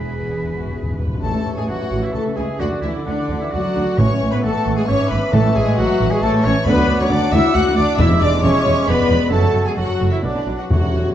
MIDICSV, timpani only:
0, 0, Header, 1, 2, 480
1, 0, Start_track
1, 0, Key_signature, 3, "major"
1, 0, Tempo, 474308
1, 1254, Time_signature, 3, 2, 24, 8
1, 1254, Tempo, 458015
1, 4134, Tempo, 444444
1, 9894, Tempo, 464756
1, 11778, End_track
2, 0, Start_track
2, 0, Title_t, "Timpani"
2, 0, Program_c, 0, 47
2, 48, Note_on_c, 0, 40, 39
2, 116, Note_off_c, 0, 40, 0
2, 128, Note_on_c, 0, 40, 35
2, 196, Note_off_c, 0, 40, 0
2, 208, Note_on_c, 0, 40, 41
2, 273, Note_off_c, 0, 40, 0
2, 285, Note_on_c, 0, 40, 42
2, 353, Note_off_c, 0, 40, 0
2, 442, Note_on_c, 0, 40, 51
2, 511, Note_off_c, 0, 40, 0
2, 523, Note_on_c, 0, 40, 54
2, 591, Note_off_c, 0, 40, 0
2, 603, Note_on_c, 0, 40, 55
2, 661, Note_off_c, 0, 40, 0
2, 673, Note_on_c, 0, 40, 56
2, 741, Note_off_c, 0, 40, 0
2, 753, Note_on_c, 0, 40, 59
2, 824, Note_off_c, 0, 40, 0
2, 837, Note_on_c, 0, 40, 72
2, 903, Note_off_c, 0, 40, 0
2, 916, Note_on_c, 0, 40, 72
2, 987, Note_off_c, 0, 40, 0
2, 999, Note_on_c, 0, 40, 78
2, 1065, Note_off_c, 0, 40, 0
2, 1077, Note_on_c, 0, 40, 75
2, 1143, Note_off_c, 0, 40, 0
2, 1155, Note_on_c, 0, 40, 93
2, 1231, Note_off_c, 0, 40, 0
2, 1245, Note_on_c, 0, 45, 94
2, 1931, Note_off_c, 0, 45, 0
2, 4127, Note_on_c, 0, 45, 114
2, 4813, Note_off_c, 0, 45, 0
2, 5584, Note_on_c, 0, 45, 118
2, 6267, Note_off_c, 0, 45, 0
2, 8455, Note_on_c, 0, 40, 118
2, 9136, Note_off_c, 0, 40, 0
2, 11324, Note_on_c, 0, 40, 116
2, 11778, Note_off_c, 0, 40, 0
2, 11778, End_track
0, 0, End_of_file